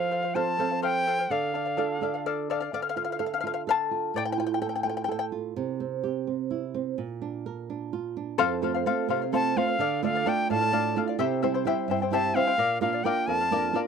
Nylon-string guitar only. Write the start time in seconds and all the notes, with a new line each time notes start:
Already playing: F3
0.35 C4 F4 A4
0.59 C4 F4 A4
1.30 D3
1.77 D4 F4 A4
2.01 D4 F4 A4
2.73 D3
2.96 F4
3.20 A4
3.44 F4
3.67 A4
3.91 F4
4.14 A2
4.38 F4
4.62 A4
4.85 F4
5.08 A4
5.32 F4
5.56 C3
5.80 C4
6.04 G4
6.27 C4
6.51 E4
6.74 C4
6.98 A#2
7.22 D4
7.46 A#4
7.70 D4
7.93 F4
8.17 D4
8.39 F2
8.62 A3 C4 F4
8.86 A3 C4 F4
9.09 C3
9.32 A3 C4 F4
9.56 A3 C4 F4
9.79 D3
10.03 A3 D4 F4
10.26 A3 D4 F4
10.50 A2
10.72 A3 D4 F4
10.96 A3 D4 F4
11.19 C3
11.42 G3 C4 E4
11.65 G3 C4 E4
11.88 G2
12.10 G3 C4 E4
12.34 G3 C4 E4
12.58 A#2
12.81 A#3 D4 F4
13.04 A#3 D4 F4
13.28 F2
13.51 A#3 D4 F4
13.73 A#3 D4 F4